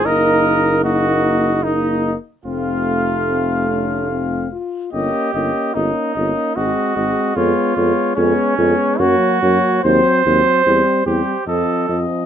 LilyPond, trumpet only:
\new Staff \with { instrumentName = "Trumpet" } { \time 3/4 \key ees \dorian \tempo 4 = 73 ees''4 ees''4 ees''8 r8 | f''2~ f''8 r8 | ees''8 ees''8 ees''8 ees''8 ees''8 ees''8 | des''8 des''8 des''8 des''8 des''8 des''8 |
c''8 c''8 c''8 c''8 ees''8 ees''8 | }